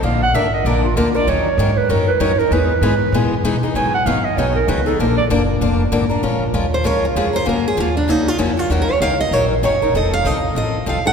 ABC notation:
X:1
M:4/4
L:1/8
Q:"Swing" 1/4=194
K:Bbphr
V:1 name="Clarinet"
f g _f e =d =F B d | d3 c B c d B | =B6 z2 | a g f e d B c =A |
B =d z6 | [K:Bbm] z8 | z8 | z8 |
z8 |]
V:2 name="Steel-string acoustic guitar"
z8 | z8 | z8 | z8 |
z8 | [K:Bbm] z3 c d F A c | B A F =D E F =E F | (3G B d f e d z d2 |
e f e2 e2 f g |]
V:3 name="Steel-string acoustic guitar"
[=D,F,B,=DB] z [D,F,B,DB] z [D,F,B,DB] z [D,F,B,DB] [B,DB] | [E,G,DEB] z [E,G,DEB] z [E,G,DEB] z [E,G,DEB] [DEB] | [=E,^G,=B,^D^G] z [E,G,B,DG] z [E,G,B,DG] z [E,G,B,DG] [B,DG] | [E,G,CEA] z [E,G,CEA] z [E,G,CEA] z [E,G,CEA] [CEA] |
[=D,F,B,=DB] z [D,F,B,DB] z [D,F,B,DB] z [D,F,B,DB] [B,DB] | [K:Bbm] [F,A,DFB] z [F,A,DFB] z [F,A,DFB] z [F,A,DFB] [DFB] | [D,F,B,DG] z [D,F,B,DG] z [D,F,B,DG] z [D,F,B,DG] [B,DG] | [E,G,DEB] z [E,G,DEB] z [E,G,DEB] z [E,G,DEB] [DEB] |
[F,CE=A] z [F,CEA] z [F,CEA] z [F,CEA] [CEA] |]
V:4 name="Upright bass" clef=bass
B,,,2 A,,,2 B,,,2 =D,,2 | E,,2 A,,2 G,,2 F,,2 | =E,,2 ^G,,2 B,, z =B,,2 | A,,2 G,,2 C,,2 D,,2 |
B,,,2 G,,,2 F,,,2 A,,, z | [K:Bbm] B,,,2 E,,2 D,,2 F,,2 | G,,2 E,,2 D,,2 F,,2 | E,, z D,,2 B,,,2 G,,,2 |
F,,,2 C,,2 =A,,,2 C,,2 |]